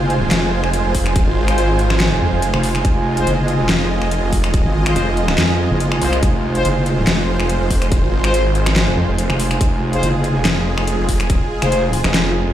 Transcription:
0.00 0.30 F#1 loud
0.00 12.53 G#3 medium
0.00 12.53 F4 medium
0.00 2.84 C5 loud
0.00 12.53 G#5 medium
0.10 closed hi-hat medium
0.31 0.62 F1 loud
0.31 snare loud
0.31 clap medium
0.31 closed hi-hat medium
0.64 0.83 F1 loud
0.64 finger snap soft
0.74 closed hi-hat medium
0.85 1.25 F1 loud
0.95 kick medium
0.95 open hi-hat medium
1.06 finger snap soft
1.06 closed hi-hat medium
1.16 kick loud
1.16 closed hi-hat medium
1.27 2.10 G#1 loud
1.48 1.68 G#3 medium
1.48 1.68 F4 medium
1.48 1.68 C5 medium
1.48 finger snap medium
1.48 closed hi-hat medium
1.58 closed hi-hat medium
1.79 closed hi-hat medium
1.90 finger snap medium
1.90 snare soft
2.00 snare loud
2.00 clap medium
2.00 closed hi-hat medium
2.11 2.20 F1 loud
2.21 2.31 F2 loud
2.33 2.52 F1 loud
2.42 closed hi-hat medium
2.54 2.83 F1 loud
2.54 finger snap medium
2.63 open hi-hat medium
2.75 finger snap soft
2.75 closed hi-hat medium
2.85 3.25 F1 loud
2.85 6.22 D#5 loud
2.85 kick loud
2.85 closed hi-hat medium
3.17 3.29 G#3 medium
3.17 3.29 F4 medium
3.17 3.29 C5 loud
3.17 closed hi-hat medium
3.27 3.68 F#1 loud
3.27 closed hi-hat medium
3.48 closed hi-hat medium
3.69 4.00 F1 loud
3.69 snare loud
3.69 clap medium
3.69 closed hi-hat medium
4.02 4.21 F1 loud
4.02 finger snap medium
4.11 closed hi-hat medium
4.23 4.63 F1 loud
4.33 kick medium
4.33 open hi-hat medium
4.44 finger snap medium
4.44 closed hi-hat soft
4.54 kick loud
4.54 closed hi-hat medium
4.65 4.94 G#1 loud
4.86 5.06 G#3 medium
4.86 5.06 F4 medium
4.86 5.06 C5 medium
4.86 finger snap medium
4.86 closed hi-hat medium
4.96 5.37 F1 loud
4.96 closed hi-hat medium
5.17 closed hi-hat soft
5.28 finger snap medium
5.28 snare soft
5.38 5.69 F2 loud
5.38 snare loud
5.38 clap medium
5.38 closed hi-hat medium
5.71 6.00 F#1 loud
5.80 closed hi-hat medium
5.92 finger snap medium
6.02 6.21 C2 medium
6.02 6.15 G#3 medium
6.02 6.15 F4 medium
6.02 6.15 C5 medium
6.02 open hi-hat medium
6.13 finger snap medium
6.13 closed hi-hat soft
6.23 6.63 F1 medium
6.23 9.60 C5 loud
6.23 kick loud
6.23 closed hi-hat medium
6.55 6.67 G#3 medium
6.55 6.67 F4 medium
6.55 6.67 C5 loud
6.55 closed hi-hat medium
6.65 7.06 F#1 loud
6.65 closed hi-hat medium
6.86 closed hi-hat soft
7.07 7.38 F1 loud
7.07 snare loud
7.07 clap medium
7.07 closed hi-hat medium
7.40 7.59 F1 medium
7.40 finger snap medium
7.49 closed hi-hat medium
7.61 8.01 F1 loud
7.71 kick medium
7.71 open hi-hat medium
7.82 finger snap medium
7.82 closed hi-hat soft
7.92 kick loud
7.92 closed hi-hat medium
8.03 8.86 G#1 loud
8.24 8.44 G#3 medium
8.24 8.44 F4 medium
8.24 8.44 C5 loud
8.24 finger snap medium
8.24 closed hi-hat medium
8.34 closed hi-hat medium
8.55 closed hi-hat medium
8.66 finger snap medium
8.66 snare soft
8.76 snare loud
8.76 clap medium
8.76 closed hi-hat medium
8.87 8.96 F1 medium
8.97 9.07 F2 loud
9.09 9.28 F1 loud
9.18 closed hi-hat medium
9.30 9.59 F1 loud
9.30 finger snap medium
9.40 open hi-hat loud
9.51 finger snap medium
9.51 closed hi-hat medium
9.61 10.01 F1 medium
9.61 12.53 G#4 loud
9.61 kick loud
9.61 closed hi-hat medium
9.93 10.05 G#3 medium
9.93 10.05 F4 medium
9.93 10.05 C5 loud
9.93 closed hi-hat medium
10.03 10.44 F#1 loud
10.03 closed hi-hat medium
10.24 closed hi-hat medium
10.45 10.76 F1 loud
10.45 snare loud
10.45 clap medium
10.45 closed hi-hat medium
10.78 10.97 F1 loud
10.78 finger snap medium
10.87 closed hi-hat medium
10.99 11.39 F1 medium
11.09 kick medium
11.09 open hi-hat loud
11.20 finger snap medium
11.20 closed hi-hat medium
11.30 kick loud
11.30 closed hi-hat medium
11.62 12.03 F1 loud
11.62 11.82 G#3 medium
11.62 11.82 F4 medium
11.62 11.82 C5 loud
11.62 finger snap medium
11.62 closed hi-hat medium
11.72 closed hi-hat medium
11.93 open hi-hat medium
12.04 12.45 F1 loud
12.04 finger snap medium
12.04 snare soft
12.14 snare loud
12.14 clap medium
12.14 closed hi-hat medium
12.47 12.53 F1 loud

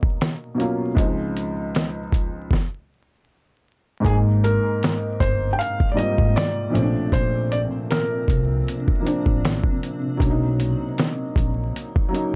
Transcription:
0.00 0.99 D#4 medium
0.00 kick medium
0.21 snare loud
0.21 closed hi-hat medium
0.55 0.83 B2 medium
0.55 0.84 F#3 medium
0.55 0.85 A#3 medium
0.59 0.86 C#4 medium
0.59 0.87 F4 medium
0.59 closed hi-hat soft
0.95 1.98 C#2 medium
0.95 1.99 F3 medium
0.95 2.00 G#3 medium
0.95 kick loud
0.95 closed hi-hat medium
0.99 2.00 C4 medium
0.99 2.01 D#4 medium
1.37 closed hi-hat medium
1.75 snare loud
1.75 closed hi-hat medium
2.12 kick medium
2.12 closed hi-hat medium
2.51 kick medium
2.51 snare medium
4.00 5.05 G#2 medium
4.00 5.06 G#3 medium
4.00 5.06 A#3 medium
4.04 4.56 G#1 loud
4.04 10.16 C3 medium
4.04 6.71 C4 medium
4.04 5.07 C4 medium
4.04 5.08 D#4 medium
4.04 4.14 G#4 medium
4.04 6.71 G5 medium
4.04 kick loud
4.04 closed hi-hat medium
4.44 5.23 A#4 medium
4.44 closed hi-hat medium
4.83 snare loud
4.83 closed hi-hat medium
5.20 5.53 G1 medium
5.20 5.50 C5 medium
5.20 kick medium
5.20 closed hi-hat medium
5.53 5.59 G5 medium
5.59 5.89 F5 loud
5.59 closed hi-hat medium
5.80 kick medium
5.92 6.71 G#2 medium
5.92 6.72 G3 medium
5.92 5.97 D5 medium
5.97 6.72 A#3 medium
5.97 6.73 C4 medium
5.97 6.74 F4 medium
5.97 6.37 D#5 loud
5.97 closed hi-hat medium
6.18 6.33 G#1 medium
6.18 kick medium
6.36 7.15 D5 medium
6.36 snare loud
6.36 closed hi-hat medium
6.70 7.96 A#2 medium
6.70 7.97 F3 medium
6.70 7.98 A3 medium
6.70 10.16 C4 medium
6.70 10.16 D4 medium
6.74 6.93 A#1 loud
6.74 7.98 C4 medium
6.74 6.82 C#4 medium
6.74 closed hi-hat medium
6.83 8.02 D4 loud
7.12 7.64 A#1 loud
7.12 7.52 C5 loud
7.12 kick loud
7.12 closed hi-hat medium
7.52 7.60 D5 medium
7.52 closed hi-hat medium
7.91 9.40 A#4 medium
7.91 snare loud
7.91 closed hi-hat medium
8.28 8.61 C2 medium
8.28 kick medium
8.28 closed hi-hat medium
8.68 closed hi-hat medium
8.88 kick medium
9.00 9.79 F3 medium
9.00 9.78 A#3 medium
9.05 9.80 C4 medium
9.05 9.81 D4 loud
9.05 closed hi-hat medium
9.26 9.59 A1 medium
9.26 kick medium
9.45 snare loud
9.45 closed hi-hat medium
9.64 kick medium
9.83 closed hi-hat medium
10.17 10.72 B1 loud
10.17 12.35 C#3 medium
10.17 11.21 F#3 medium
10.17 11.22 A#3 medium
10.17 12.35 A#3 medium
10.17 12.35 D#4 medium
10.17 kick loud
10.21 11.23 C#4 medium
10.21 10.29 D4 medium
10.21 closed hi-hat medium
10.30 11.27 D#4 loud
10.60 closed hi-hat medium
10.98 snare loud
10.98 closed hi-hat medium
11.36 11.69 A#1 medium
11.36 kick medium
11.36 closed hi-hat medium
11.76 closed hi-hat medium
11.96 kick medium
12.09 12.35 F#3 medium
12.09 12.35 A#3 medium
12.13 12.35 C#4 medium
12.13 12.35 D#4 medium
12.13 closed hi-hat medium

